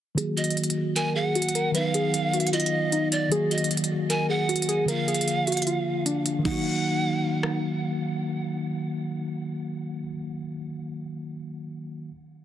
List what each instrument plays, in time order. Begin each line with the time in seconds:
0.15 tine electric piano D#3 F#3, synth keys G#4, closed hi-hat
0.19 tine electric piano A#3 F#4
0.37 synth keys F#4, pan flute D#5, closed hi-hat
0.44 closed hi-hat
0.50 closed hi-hat
0.57 closed hi-hat
0.64 closed hi-hat
0.70 closed hi-hat
0.96 synth keys A#4, pan flute G#5, closed hi-hat
1.15 synth keys G#4, pan flute F#5
1.35 synth keys F#4, closed hi-hat
1.42 closed hi-hat
1.49 closed hi-hat
1.55 synth keys A#4, closed hi-hat
1.72 tine electric piano D#3 F#3, synth keys B4, pan flute F5, closed hi-hat
1.76 tine electric piano B3 D#4
1.94 synth keys G#4, closed hi-hat
2.14 closed hi-hat
2.33 synth keys F#4, closed hi-hat
2.40 closed hi-hat
2.47 closed hi-hat
2.53 synth keys F4, pan flute D#5, closed hi-hat
2.60 closed hi-hat
2.66 closed hi-hat
2.92 synth keys D#4, closed hi-hat
3.12 pan flute D5, closed hi-hat
3.28 tine electric piano D#3 F#3, synth keys G#4, closed hi-hat
3.33 tine electric piano A#3 F#4
3.51 synth keys F#4, pan flute D#5, closed hi-hat
3.58 closed hi-hat
3.64 closed hi-hat
3.71 closed hi-hat
3.77 closed hi-hat
3.84 closed hi-hat
4.10 synth keys A#4, pan flute G#5, closed hi-hat
4.29 synth keys G#4, pan flute F#5
4.49 synth keys F#4, closed hi-hat
4.56 closed hi-hat
4.62 closed hi-hat
4.69 synth keys G#4, closed hi-hat
4.85 tine electric piano D3 F3, synth keys A#4, pan flute F5, closed hi-hat
4.89 tine electric piano A#3 F4
5.08 synth keys G#4, closed hi-hat
5.14 closed hi-hat
5.21 closed hi-hat
5.28 closed hi-hat
5.47 synth keys F#4, closed hi-hat
5.52 closed hi-hat
5.57 closed hi-hat
5.62 closed hi-hat
5.67 synth keys F4, closed hi-hat
6.06 synth keys D4, closed hi-hat
6.26 closed hi-hat
6.39 tine electric piano D#3
6.43 tine electric piano F#3, synth keys D#4, pan flute F#5, kick, crash
6.47 tine electric piano A#3
6.52 tine electric piano F#4
7.43 cross-stick